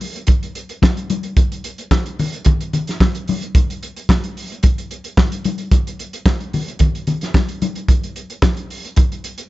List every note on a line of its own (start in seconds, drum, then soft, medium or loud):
0.01 open hi-hat medium
0.01 muted conga soft
0.16 closed hi-hat soft
0.27 kick loud
0.27 closed hi-hat medium
0.27 muted conga medium
0.43 closed hi-hat soft
0.55 closed hi-hat medium
0.69 closed hi-hat soft
0.82 kick loud
0.82 snare medium
0.82 clap medium
0.82 high conga medium
0.97 closed hi-hat soft
1.10 closed hi-hat medium
1.10 high conga medium
1.23 closed hi-hat soft
1.37 kick loud
1.37 closed hi-hat medium
1.37 muted conga medium
1.52 closed hi-hat soft
1.64 closed hi-hat medium
1.78 closed hi-hat soft
1.91 kick loud
1.91 snare loud
1.91 clap loud
1.91 high conga medium
2.06 closed hi-hat soft
2.19 open hi-hat medium
2.19 muted conga soft
2.19 low conga medium
2.34 closed hi-hat soft
2.45 kick loud
2.45 closed hi-hat medium
2.45 muted conga medium
2.45 low conga medium
2.60 closed hi-hat soft
2.73 closed hi-hat medium
2.73 low conga medium
2.87 snare soft
2.87 closed hi-hat soft
3.00 kick medium
3.00 snare medium
3.00 clap medium
3.00 high conga medium
3.15 closed hi-hat soft
3.28 open hi-hat medium
3.28 high conga medium
3.42 closed hi-hat soft
3.55 kick loud
3.55 closed hi-hat medium
3.55 muted conga medium
3.70 closed hi-hat soft
3.83 closed hi-hat medium
3.96 closed hi-hat soft
4.09 kick loud
4.09 snare loud
4.09 clap loud
4.09 high conga medium
4.24 closed hi-hat soft
4.37 open hi-hat medium
4.52 closed hi-hat soft
4.63 kick loud
4.63 closed hi-hat medium
4.63 muted conga medium
4.78 closed hi-hat soft
4.91 closed hi-hat soft
5.04 closed hi-hat soft
5.17 kick medium
5.17 snare medium
5.17 clap medium
5.17 high conga medium
5.32 closed hi-hat soft
5.44 closed hi-hat medium
5.44 high conga medium
5.58 closed hi-hat soft
5.71 kick loud
5.71 closed hi-hat medium
5.71 muted conga medium
5.87 closed hi-hat soft
5.99 closed hi-hat medium
6.13 closed hi-hat soft
6.26 kick loud
6.26 snare loud
6.26 clap medium
6.26 high conga medium
6.40 closed hi-hat soft
6.53 open hi-hat medium
6.53 muted conga soft
6.53 low conga medium
6.68 closed hi-hat soft
6.79 kick loud
6.79 closed hi-hat medium
6.79 muted conga soft
6.79 low conga medium
6.95 closed hi-hat soft
7.07 closed hi-hat medium
7.07 low conga medium
7.21 snare soft
7.21 closed hi-hat soft
7.34 kick loud
7.34 snare medium
7.34 clap medium
7.34 high conga medium
7.49 closed hi-hat soft
7.62 closed hi-hat medium
7.62 high conga medium
7.75 closed hi-hat soft
7.88 kick loud
7.88 closed hi-hat medium
7.88 muted conga medium
8.03 closed hi-hat soft
8.16 closed hi-hat medium
8.30 closed hi-hat soft
8.42 kick loud
8.42 snare loud
8.42 clap medium
8.42 high conga medium
8.57 closed hi-hat soft
8.70 open hi-hat medium
8.85 closed hi-hat soft
8.96 kick loud
8.96 closed hi-hat medium
8.96 muted conga medium
9.12 closed hi-hat soft
9.24 closed hi-hat medium
9.38 closed hi-hat soft